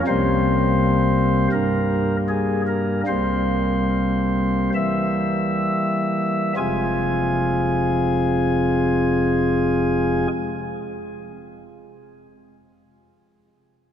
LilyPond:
<<
  \new Staff \with { instrumentName = "Pipe organ" } { \time 4/4 \key f \minor \tempo 4 = 32 <c, c''>4 bes'8 aes'16 bes'16 <c, c''>4 e''4 | <f,, f, c aes c' f' aes' aes''>1 | }
  \new Staff \with { instrumentName = "Pipe organ" } { \clef bass \time 4/4 \key f \minor << { <g bes>2 <g bes>2 | r1 | } \\ { c4 g,4 c4 e4 | r1 | } >> }
>>